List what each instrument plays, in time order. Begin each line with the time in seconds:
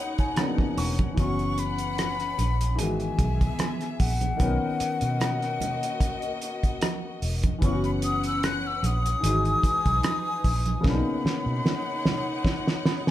Already playing: fingered electric bass B1, grand piano C#3 A#3 B3 D#4 F#5, string section D#4 C#5 F#5, flute B5
0.18 grand piano G#5, kick, closed hi-hat
0.36 grand piano C#3 A#3 B3 D4 A#5, cross-stick, closed hi-hat, high conga
0.46 grand piano D#4
0.58 kick, cross-stick, high conga
0.77 fingered electric bass E1, grand piano C#6, open hi-hat
0.99 kick, closed hi-hat, high conga
1.14 fingered electric bass F#1, grand piano E3 B3, string section C#4 B4 F#5, kick, closed hi-hat, muted conga
1.19 grand piano C#4 F#4, flute C#6
1.39 closed hi-hat
1.58 flute B5, closed hi-hat
1.78 closed hi-hat
1.98 cross-stick, closed hi-hat, high conga
2.20 cross-stick, closed hi-hat
2.38 fingered electric bass A#1, closed hi-hat, muted conga
2.61 closed hi-hat
2.75 fingered electric bass G#1, grand piano E3 G#3, string section B3 G#4 E5, closed hi-hat, muted conga
2.79 grand piano D#3 F#4, flute G#5
3.00 closed hi-hat
3.19 fingered electric bass B1, kick, closed hi-hat
3.41 kick, closed hi-hat
3.59 cross-stick, closed hi-hat, high conga
3.81 cross-stick, closed hi-hat
4.00 fingered electric bass A#1, flute F#5, kick, open hi-hat
4.21 closed hi-hat, high conga
4.37 fingered electric bass B1, grand piano D#3 B3, string section A#3 F#4 D#5, kick, closed hi-hat, muted conga
4.42 grand piano C#4 A#4
4.80 muted fingered electric bass stroke, closed hi-hat
5.01 fingered electric bass B2, closed hi-hat
5.20 cross-stick, closed hi-hat, high conga
5.42 cross-stick, closed hi-hat
5.60 closed hi-hat, muted conga, low conga
5.83 closed hi-hat
6.00 kick, closed hi-hat, muted conga
6.22 closed hi-hat
6.42 closed hi-hat
6.63 kick, closed hi-hat
6.82 cross-stick, closed hi-hat, high conga
7.22 fingered electric bass E1, open hi-hat
7.43 kick, closed hi-hat, high conga
7.58 fingered electric bass F#1, grand piano E3 B3, string section C#4 B4 F#5, kick, closed hi-hat
7.63 grand piano C#4 E4, flute C#6, muted conga
7.72 grand piano F#4
7.84 flute B5, closed hi-hat
8.02 flute D#6, closed hi-hat
8.24 flute E6, closed hi-hat
8.43 flute F#6, cross-stick, closed hi-hat, high conga
8.67 flute E6
8.83 fingered electric bass A#1, flute D#6, closed hi-hat, muted conga
9.06 closed hi-hat
9.20 fingered electric bass G#1, grand piano E3 G#3, string section D#4 B4 G#5, closed hi-hat, muted conga
9.26 grand piano D#4 F#4
9.45 closed hi-hat
9.63 muted fingered electric bass stroke, kick, closed hi-hat
9.86 fingered electric bass B1, kick, closed hi-hat
10.03 cross-stick, closed hi-hat, high conga
10.44 fingered electric bass A#1, kick, open hi-hat
10.66 closed hi-hat, high conga
10.81 fingered electric bass B1, grand piano C#3 A#3, string section D#4 C#5 F#5, kick
10.85 grand piano B3 D4, flute B5, snare, muted conga
10.94 grand piano D#4
11.25 muted fingered electric bass stroke, snare
11.46 fingered electric bass B2
11.66 snare, high conga
12.05 snare, muted conga, low conga
12.45 kick, snare, muted conga
12.67 snare
12.86 grand piano B5, snare
13.07 grand piano G#5, snare